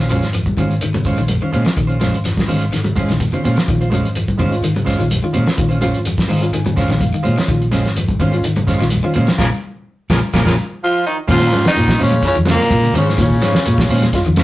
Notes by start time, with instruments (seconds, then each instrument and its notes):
Already playing: fingered electric bass A#1
0.00 clean electric guitar C#4
0.10 clean electric guitar F3 G#3 C#4 F4 C5, closed hi-hat, high conga, shekere
0.22 fingered electric bass G#1, snare, closed hi-hat, shekere
0.33 clean electric guitar F3, closed hi-hat, high conga, shekere
0.46 kick, closed hi-hat, high conga
0.57 fingered electric bass G#1, clean electric guitar D#3 G#3 C#4 F4 C5, kick, closed hi-hat, low conga, shekere
0.70 closed hi-hat, shekere
0.81 fingered electric bass G#1, clean electric guitar D#3, closed hi-hat, high conga, shekere
0.94 clean electric guitar C#3, closed hi-hat, high conga, low conga
1.04 clean electric guitar G#3 C#4 F4 C5, kick, closed hi-hat, shekere
1.17 fingered electric bass A#1, clean electric guitar D#3, closed hi-hat, shekere
1.28 closed hi-hat, high conga, shekere
1.42 clean electric guitar D#3 C#4 F4 C5
1.52 fingered electric bass A#2, clean electric guitar G#3 C#4 F4 C5, closed hi-hat, low conga, shekere
1.65 clean electric guitar F3, snare, closed hi-hat, shekere
1.77 fingered electric bass A#1, clean electric guitar D#3, kick, closed hi-hat, high conga, shekere
1.87 clean electric guitar C#4 F4 C5, closed hi-hat
2.00 clean electric guitar F3 G#3 C#4 F4 C5, snare, closed hi-hat, high conga, shekere
2.14 fingered electric bass G#1, closed hi-hat, shekere
2.24 clean electric guitar F3, snare, closed hi-hat, high conga, shekere
2.37 kick, snare, closed hi-hat, high conga
2.47 fingered electric bass G#1, clean electric guitar D#3 G#3 C#4 F4 C5, open hi-hat, high conga, low conga, shekere
2.60 closed hi-hat, shekere
2.71 fingered electric bass G#1, clean electric guitar D#3, snare, closed hi-hat, high conga, shekere
2.84 clean electric guitar C#3, closed hi-hat, high conga
2.96 clean electric guitar G#3 C#4 F4 C5, kick, closed hi-hat, high conga, shekere
3.08 fingered electric bass A#1, clean electric guitar D#3, snare, closed hi-hat, high conga, shekere
3.20 kick, closed hi-hat, low conga, shekere
3.33 clean electric guitar D#3 C#4 F4 C5, closed hi-hat, low conga
3.44 fingered electric bass A#2, clean electric guitar G#3 C#4 F4 C5, closed hi-hat, low conga, shekere
3.57 clean electric guitar F3, snare, closed hi-hat, low conga, shekere
3.67 fingered electric bass A#1, clean electric guitar D#3, reed electric piano G#3 C#4 F4, kick, closed hi-hat, high conga, shekere
3.81 clean electric guitar F4 C5, muted clean electric guitar stroke, closed hi-hat
3.90 clean electric guitar F3 G#3 C#4 F4 C5, closed hi-hat, high conga, shekere
4.04 fingered electric bass G#1, closed hi-hat, shekere
4.15 clean electric guitar F3, closed hi-hat, high conga, shekere
4.28 kick, closed hi-hat, high conga
4.38 fingered electric bass G#1, clean electric guitar D#3 G#3 C#4 F4 C5, kick, closed hi-hat, low conga, shekere
4.51 reed electric piano G#3 C#4 F4, closed hi-hat, shekere
4.63 fingered electric bass G#1, clean electric guitar D#3, closed hi-hat, high conga, shekere
4.76 clean electric guitar C#3, closed hi-hat, high conga
4.85 clean electric guitar G#3 C#4 F4 C5, kick, snare, closed hi-hat, shekere
4.98 fingered electric bass A#1, clean electric guitar D#3, reed electric piano G#3 C#4 F4, closed hi-hat, shekere
5.10 closed hi-hat, high conga, shekere
5.22 clean electric guitar D#3, reed electric piano G#3 C#4 F4
5.33 fingered electric bass A#2, clean electric guitar G#3 C#4 F4 C5, closed hi-hat, low conga, shekere
5.46 clean electric guitar F3, snare, closed hi-hat, shekere
5.57 fingered electric bass A#1, clean electric guitar D#3, reed electric piano G#3 C#4 F4, kick, closed hi-hat, high conga, shekere
5.69 clean electric guitar C#4 F4 C5, closed hi-hat
5.81 clean electric guitar F3 C#4 F4 C5, reed electric piano G#3 C#4 F4, muted clean electric guitar stroke, closed hi-hat, high conga, shekere
5.94 fingered electric bass G#1, closed hi-hat, shekere
6.05 clean electric guitar F3, closed hi-hat, high conga, shekere
6.18 kick, snare, closed hi-hat, high conga
6.28 fingered electric bass G#1, clean electric guitar D#3 G#3 F4 C5, reed electric piano A#5, open hi-hat, low conga, shekere
6.41 reed electric piano G#3 C#4 F4, closed hi-hat, shekere
6.53 fingered electric bass G#1, clean electric guitar D#3, reed electric piano G#5, closed hi-hat, high conga, shekere
6.66 clean electric guitar C#3, closed hi-hat, high conga, low conga
6.76 clean electric guitar G#3 C#4 F4 C5, reed electric piano F5, kick, snare, closed hi-hat, shekere
6.89 fingered electric bass A#1, clean electric guitar D#3, reed electric piano G#3 C#4 G4, snare, closed hi-hat, shekere
7.00 reed electric piano F5, kick, closed hi-hat, high conga, shekere
7.14 clean electric guitar D#3, closed hi-hat
7.23 fingered electric bass A#2, clean electric guitar G#3 F4 C5, reed electric piano G#3 C#4 F4 C#5, closed hi-hat, low conga, shekere
7.37 clean electric guitar F3, snare, closed hi-hat, shekere
7.48 fingered electric bass A#1, clean electric guitar D#3, reed electric piano G#3 C#4 F4, kick, closed hi-hat, high conga, shekere
7.62 closed hi-hat
7.71 clean electric guitar F3 G#3 C#4 F4 C5, snare, closed hi-hat, high conga, shekere
7.85 fingered electric bass G#1, snare, closed hi-hat, shekere
7.96 clean electric guitar F3, closed hi-hat, high conga, shekere
8.08 kick, closed hi-hat, high conga
8.19 fingered electric bass G#1, clean electric guitar D#3 G#3 C#4 F4 C5, kick, closed hi-hat, low conga, shekere
8.32 reed electric piano G#3 C#4 F4, closed hi-hat, shekere
8.42 fingered electric bass G#1, clean electric guitar D#3, closed hi-hat, high conga, shekere
8.56 clean electric guitar C#3, closed hi-hat, high conga
8.67 clean electric guitar G#3 C#4 F4 C5, kick, snare, closed hi-hat, shekere
8.79 fingered electric bass A#1, clean electric guitar D#3, reed electric piano G#3 C#4 F4, snare, closed hi-hat, shekere
8.90 closed hi-hat, high conga, shekere
9.03 clean electric guitar D#3 C#4 F4 C5, reed electric piano G#3 C#4 F4
9.14 fingered electric bass A#2, clean electric guitar G#3 C#4 F4 C5, closed hi-hat, low conga, shekere
9.27 clean electric guitar F3, snare, closed hi-hat, shekere
9.38 fingered electric bass A#1, clean electric guitar A#2 C#3 F3 F4 G#4 A#4, reed electric piano A#3 C#4 F4, kick, snare, high conga, shekere
10.10 fingered electric bass A#1, clean electric guitar A#2 C#3 F3 F4 G#4 A#4, reed electric piano A#3 C#4 F4, kick, snare, high conga, shekere
10.33 fingered electric bass A#1, clean electric guitar A#2 C#3 F3 F4 G#4 A#4, reed electric piano A#3 C#4 F4, kick, snare, high conga, shekere
10.45 fingered electric bass A#1, clean electric guitar A#2 C#3 F3 F4 G#4 A#4, reed electric piano A#3 C#4 F4, kick, snare, high conga, shekere
10.83 baritone saxophone F3, trombone F4, tenor saxophone F4
11.06 baritone saxophone D#3, tenor saxophone D#4, trombone D#4
11.27 fingered electric bass A#2, clean electric guitar D#3 G#3 C#4 F4 C5, baritone saxophone F3, reed electric piano G#3 C#4 F4, tenor saxophone F4, kick, crash, shekere
11.33 trombone F4
11.41 clean electric guitar C#4 F4 C5, closed hi-hat
11.52 fingered electric bass G#2, clean electric guitar F3 G#3 C#4 F4 C5, closed hi-hat, high conga, shekere
11.65 baritone saxophone D#3, trombone D#4, tenor saxophone D#4, muted fingered electric bass stroke, snare, closed hi-hat
11.75 fingered electric bass A#2, reed electric piano G#3 C#4 F4, closed hi-hat, high conga, shekere
11.88 clean electric guitar G3, kick, snare, closed hi-hat
11.98 fingered electric bass A#2, baritone saxophone C#3, clean electric guitar G#3 C#4 F4 C5, open hi-hat, low conga, shekere
12.03 trombone C#4, tenor saxophone C#4
12.11 clean electric guitar F3, closed hi-hat, high conga
12.22 baritone saxophone C#3, reed electric piano G#3 C#4 F4, kick, snare, closed hi-hat, high conga, shekere
12.26 trombone C#4, tenor saxophone C#4
12.35 fingered electric bass F2, clean electric guitar D#3, closed hi-hat
12.45 clean electric guitar C#3 G#3 C#4 F4 C5, snare, closed hi-hat, high conga, shekere
12.50 baritone saxophone A#2, trombone A#3, tenor saxophone A#3
12.60 clean electric guitar C3, snare
12.70 fingered electric bass A#2, reed electric piano G#3 C#4 F4, kick, closed hi-hat, high conga, shekere
12.83 clean electric guitar C#3, closed hi-hat
12.94 fingered electric bass G#2, clean electric guitar D#3 G#3 C#4 F4 C5, trombone C#4, closed hi-hat, low conga, shekere
12.98 baritone saxophone C#3, tenor saxophone C#4
13.07 clean electric guitar C#4 F4 C5, snare
13.17 fingered electric bass A#2, clean electric guitar D#3, reed electric piano G#3 C#4 F4, kick, snare, closed hi-hat, high conga, shekere
13.22 baritone saxophone C#3, tenor saxophone C#4, trombone C#4
13.31 kick, closed hi-hat
13.42 fingered electric bass G#2, clean electric guitar F3 G#3 C#4 F4 C5, snare, closed hi-hat, high conga, shekere
13.55 muted fingered electric bass stroke, snare
13.66 fingered electric bass A#2, reed electric piano G#3 C#4 F4, closed hi-hat, high conga, shekere
13.78 clean electric guitar G3, kick, snare
13.89 fingered electric bass A#2, clean electric guitar G#3 C#4 F4 C5, open hi-hat, low conga, shekere
14.02 clean electric guitar F3, snare, closed hi-hat, high conga
14.13 reed electric piano G#3 C#4 F4, kick, snare, closed hi-hat, high conga, shekere
14.25 fingered electric bass F2, clean electric guitar D#3, closed hi-hat
14.36 clean electric guitar F3 G#3 C#4 F4 C5, snare, closed hi-hat, high conga, shekere